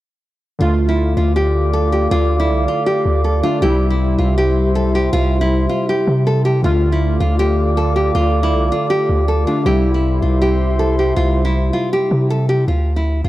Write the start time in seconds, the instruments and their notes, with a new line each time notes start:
0.59 808-style bass D2, synth keys D3 A3 F4, nylon-string guitar F4, analog synth pad A4 D5 F5 D6
0.89 nylon-string guitar E4
1.17 808-style bass D2, nylon-string guitar F4
1.36 nylon-string guitar G4
1.73 nylon-string guitar A4
1.92 nylon-string guitar G4
2.11 808-style bass D2, nylon-string guitar F4
2.40 nylon-string guitar E4
2.49 808-style bass C2
2.68 nylon-string guitar F4
2.86 nylon-string guitar G4
3.06 808-style bass D2
3.24 nylon-string guitar A4
3.43 synth keys D3 A3 D4, nylon-string guitar F4
3.61 808-style bass C2, synth keys C3 G3 E4, nylon-string guitar G4, analog synth pad G4 C5 E5 C6
3.90 nylon-string guitar E4
4.18 808-style bass C2, nylon-string guitar F4
4.38 nylon-string guitar G4
4.75 nylon-string guitar A4
4.95 nylon-string guitar G4
5.13 808-style bass C2, nylon-string guitar F4
5.41 nylon-string guitar E4
5.69 nylon-string guitar F4
5.89 nylon-string guitar G4
6.07 808-style bass C3
6.27 nylon-string guitar A4
6.45 nylon-string guitar G4
6.62 808-style bass D2, synth keys D3 A3 F4, nylon-string guitar F4, analog synth pad A4 D5 F5 D6
6.92 nylon-string guitar E4
7.20 808-style bass D2, nylon-string guitar F4
7.39 nylon-string guitar G4
7.77 nylon-string guitar A4
7.96 nylon-string guitar G4
8.15 808-style bass D2, nylon-string guitar F4
8.43 nylon-string guitar E4
8.53 808-style bass C2
8.72 nylon-string guitar F4
8.90 nylon-string guitar G4
9.09 808-style bass D2
9.28 nylon-string guitar A4
9.46 synth keys D3 A3 D4, nylon-string guitar F4
9.65 808-style bass C2, synth keys C3 G3 E4, nylon-string guitar G4, analog synth pad G4 C5 E5 C6
9.94 nylon-string guitar E4
10.22 808-style bass C2, nylon-string guitar F4
10.42 nylon-string guitar G4
10.79 nylon-string guitar A4
10.99 nylon-string guitar G4
11.16 808-style bass C2, nylon-string guitar F4
11.45 nylon-string guitar E4
11.73 nylon-string guitar F4
11.93 nylon-string guitar G4
12.11 808-style bass C3
12.30 nylon-string guitar A4
12.49 nylon-string guitar G4
12.68 808-style bass D2, nylon-string guitar F4
12.96 nylon-string guitar E4
13.24 808-style bass D2, nylon-string guitar F4